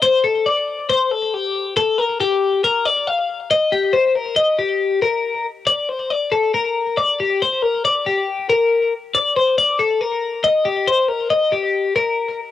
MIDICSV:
0, 0, Header, 1, 2, 480
1, 0, Start_track
1, 0, Tempo, 434468
1, 22, Time_signature, 4, 2, 24, 8
1, 13825, End_track
2, 0, Start_track
2, 0, Title_t, "Clean electric guitar"
2, 0, Program_c, 0, 27
2, 26, Note_on_c, 0, 72, 83
2, 263, Note_on_c, 0, 69, 77
2, 265, Note_off_c, 0, 72, 0
2, 504, Note_off_c, 0, 69, 0
2, 508, Note_on_c, 0, 74, 75
2, 985, Note_off_c, 0, 74, 0
2, 989, Note_on_c, 0, 72, 79
2, 1230, Note_off_c, 0, 72, 0
2, 1230, Note_on_c, 0, 69, 75
2, 1480, Note_off_c, 0, 69, 0
2, 1480, Note_on_c, 0, 67, 75
2, 1948, Note_off_c, 0, 67, 0
2, 1952, Note_on_c, 0, 69, 88
2, 2190, Note_off_c, 0, 69, 0
2, 2190, Note_on_c, 0, 70, 73
2, 2430, Note_off_c, 0, 70, 0
2, 2435, Note_on_c, 0, 67, 76
2, 2913, Note_off_c, 0, 67, 0
2, 2918, Note_on_c, 0, 70, 76
2, 3155, Note_off_c, 0, 70, 0
2, 3155, Note_on_c, 0, 74, 74
2, 3396, Note_off_c, 0, 74, 0
2, 3396, Note_on_c, 0, 77, 70
2, 3870, Note_off_c, 0, 77, 0
2, 3874, Note_on_c, 0, 75, 74
2, 4111, Note_on_c, 0, 67, 68
2, 4113, Note_off_c, 0, 75, 0
2, 4341, Note_on_c, 0, 72, 72
2, 4351, Note_off_c, 0, 67, 0
2, 4589, Note_off_c, 0, 72, 0
2, 4589, Note_on_c, 0, 70, 66
2, 4819, Note_on_c, 0, 75, 79
2, 4831, Note_off_c, 0, 70, 0
2, 5065, Note_off_c, 0, 75, 0
2, 5066, Note_on_c, 0, 67, 67
2, 5542, Note_off_c, 0, 67, 0
2, 5547, Note_on_c, 0, 70, 67
2, 6029, Note_off_c, 0, 70, 0
2, 6261, Note_on_c, 0, 74, 75
2, 6507, Note_off_c, 0, 74, 0
2, 6507, Note_on_c, 0, 72, 70
2, 6743, Note_off_c, 0, 72, 0
2, 6743, Note_on_c, 0, 74, 70
2, 6979, Note_on_c, 0, 69, 66
2, 6986, Note_off_c, 0, 74, 0
2, 7222, Note_off_c, 0, 69, 0
2, 7226, Note_on_c, 0, 70, 67
2, 7705, Note_on_c, 0, 74, 84
2, 7707, Note_off_c, 0, 70, 0
2, 7946, Note_off_c, 0, 74, 0
2, 7955, Note_on_c, 0, 67, 64
2, 8191, Note_off_c, 0, 67, 0
2, 8198, Note_on_c, 0, 72, 70
2, 8425, Note_off_c, 0, 72, 0
2, 8425, Note_on_c, 0, 70, 70
2, 8665, Note_off_c, 0, 70, 0
2, 8673, Note_on_c, 0, 74, 72
2, 8909, Note_off_c, 0, 74, 0
2, 8910, Note_on_c, 0, 67, 72
2, 9382, Note_off_c, 0, 67, 0
2, 9387, Note_on_c, 0, 70, 73
2, 9864, Note_off_c, 0, 70, 0
2, 10105, Note_on_c, 0, 74, 81
2, 10341, Note_off_c, 0, 74, 0
2, 10346, Note_on_c, 0, 72, 67
2, 10579, Note_off_c, 0, 72, 0
2, 10584, Note_on_c, 0, 74, 77
2, 10816, Note_on_c, 0, 69, 69
2, 10822, Note_off_c, 0, 74, 0
2, 11058, Note_off_c, 0, 69, 0
2, 11058, Note_on_c, 0, 70, 69
2, 11534, Note_on_c, 0, 75, 84
2, 11539, Note_off_c, 0, 70, 0
2, 11768, Note_on_c, 0, 67, 70
2, 11777, Note_off_c, 0, 75, 0
2, 12014, Note_off_c, 0, 67, 0
2, 12016, Note_on_c, 0, 72, 75
2, 12248, Note_off_c, 0, 72, 0
2, 12248, Note_on_c, 0, 70, 72
2, 12484, Note_off_c, 0, 70, 0
2, 12489, Note_on_c, 0, 75, 74
2, 12729, Note_on_c, 0, 67, 68
2, 12734, Note_off_c, 0, 75, 0
2, 13207, Note_off_c, 0, 67, 0
2, 13211, Note_on_c, 0, 70, 74
2, 13695, Note_off_c, 0, 70, 0
2, 13825, End_track
0, 0, End_of_file